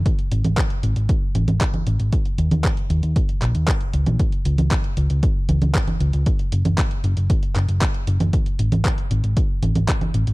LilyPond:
<<
  \new Staff \with { instrumentName = "Picked electric bass" } { \clef bass \time 4/4 \key dis \minor \tempo 4 = 116 r8 gis,,16 gis,,16 r8 gis,,16 gis,,16 r8 gis,,16 gis,,16 r8 gis,,16 gis,,16 | r8 dis,16 dis,16 r8 dis,16 dis,16 r8 ais,,16 dis,16 r8 cis,16 ais,,16 | r8 cis,16 cis,16 r8 cis,16 cis,16 r8 cis,16 cis,16 r8 cis,16 cis,16 | r8 fis,,16 fis,,16 r8 fis,,16 fis,,16 r8 fis,,16 fis,,16 r8 fis,,16 fis,,16 |
r8 gis,,16 gis,,16 r8 gis,,16 gis,,16 r8 gis,,16 gis,,16 r8 gis,,16 gis,,16 | }
  \new DrumStaff \with { instrumentName = "Drums" } \drummode { \time 4/4 <hh bd>16 hh16 hh16 <cgho hh>16 <hc hh bd>16 hh16 hh16 hh16 <hh bd>8 <cgho hh>16 <cgho hh>16 <hc hh bd>16 <cgho hh>16 hh16 hh16 | <hh bd>16 hh16 hh16 <cgho hh>16 <hc hh bd>16 hh16 hh16 hh16 <hh bd>16 hh16 <hc hh>16 hh16 <hc hh bd>16 hh16 hh16 <cgho hh>16 | <hh bd>16 hh16 hh16 <cgho hh>16 <hc hh bd>16 hh16 hh16 hh16 <hh bd>8 <cgho hh>16 <cgho hh>16 <hc hh bd>16 <cgho hh>16 hh16 hh16 | <hh bd>16 hh16 hh16 <cgho hh>16 <hc hh bd>16 hh16 hh16 hh16 <hh bd>16 hh16 <hc hh>16 hh16 <hc hh bd>16 hh16 hh16 <cgho hh>16 |
<hh bd>16 hh16 hh16 <cgho hh>16 <hc hh bd>16 hh16 hh16 hh16 <hh bd>8 <cgho hh>16 <cgho hh>16 <hc hh bd>16 <cgho hh>16 hh16 hh16 | }
>>